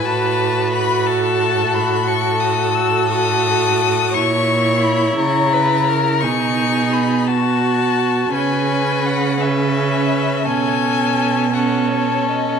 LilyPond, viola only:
\new Staff \with { instrumentName = "Viola" } { \time 12/8 \key b \mixolydian \tempo 4. = 57 fis'1~ fis'8 fis'4. | e'2. dis'4. fis'4. | cis'4. cis'4. cis'4. cis'4. | }